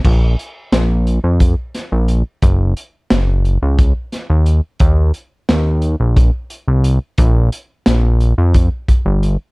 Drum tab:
CC |x------|-------|-------|-------|
HH |-xxxxxx|xxxxxxx|xxxxxxx|xxxxxxx|
SD |--o--o-|--o--o-|--o----|--o----|
BD |o---o--|o---o--|o---o--|o---oo-|